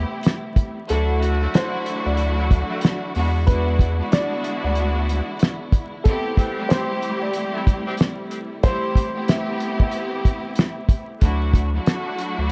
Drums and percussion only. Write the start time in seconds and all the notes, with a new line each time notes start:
0.23 snare, closed hi-hat
0.56 kick, closed hi-hat
0.89 closed hi-hat
1.22 closed hi-hat
1.54 snare, closed hi-hat
1.86 closed hi-hat
2.17 closed hi-hat
2.51 kick, closed hi-hat
2.81 snare, closed hi-hat
3.15 open hi-hat
3.47 kick, closed hi-hat
3.79 kick, closed hi-hat
4.12 snare, closed hi-hat
4.44 closed hi-hat
4.75 closed hi-hat
5.09 closed hi-hat
5.39 snare, closed hi-hat
5.72 kick, closed hi-hat
6.05 kick, closed hi-hat
6.37 kick, closed hi-hat
6.70 snare, closed hi-hat
7.02 closed hi-hat
7.33 closed hi-hat
7.67 kick, closed hi-hat
7.97 snare, closed hi-hat
8.31 closed hi-hat
8.63 kick, closed hi-hat
8.95 kick, closed hi-hat
9.28 snare, closed hi-hat
9.60 closed hi-hat
9.80 kick
9.91 closed hi-hat
10.25 kick, closed hi-hat
10.55 snare, closed hi-hat
10.89 kick, closed hi-hat
11.21 kick, closed hi-hat
11.54 kick, closed hi-hat
11.86 snare, closed hi-hat
12.18 closed hi-hat